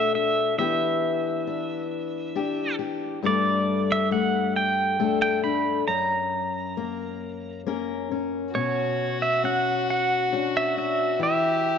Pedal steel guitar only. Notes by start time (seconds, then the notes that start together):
Already playing: E5
0.15 E5
0.59 E5
3.26 D5
3.92 E5
4.12 F#5
4.56 G5
5.22 G5
5.44 B5
5.88 A#5
8.55 C#5
9.22 E5
9.45 F#5
9.90 F#5
10.57 E5
10.78 E5
11.23 E5